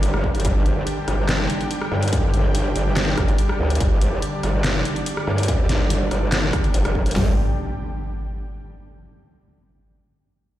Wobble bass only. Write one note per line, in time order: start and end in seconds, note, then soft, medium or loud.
0.00 0.12 G1 loud
0.14 0.43 G1 loud
0.45 0.85 G1 loud
1.08 1.48 G1 loud
1.92 2.32 G2 medium
2.34 2.74 G1 loud
2.76 3.16 G1 medium
3.18 3.37 G1 loud
3.59 3.79 D2 loud
3.80 4.21 G1 loud
4.43 4.84 G1 loud
5.27 5.68 G2 medium
5.69 6.10 G1 medium
6.11 6.52 G1 medium
6.74 7.15 F1 loud
7.16 7.36 G1 medium